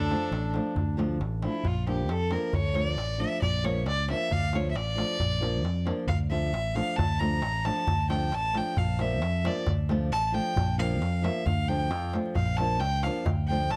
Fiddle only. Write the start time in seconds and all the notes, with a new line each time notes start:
Already playing: D4
1.44 E4
1.67 F4
1.89 G4
2.12 A4
2.32 A#4
2.55 C#5
2.75 C#5
2.86 D5
3.20 E5
3.42 D5
3.65 C#5
3.87 D5
4.10 E5
4.32 F5
4.55 C#5
4.71 E5
4.77 D5
6.08 F5
6.30 E5
6.75 F5
6.97 A5
7.20 A#5
7.65 A5
8.10 G5
8.34 A5
8.57 G5
8.78 F5
9.01 E5
9.46 D5
10.12 A5
10.27 A5
10.34 G5
10.79 F5
11.24 E5
11.46 F5
11.68 G5
12.36 F5
12.57 A5
12.80 G5
13.04 F5
13.48 G5
13.71 A5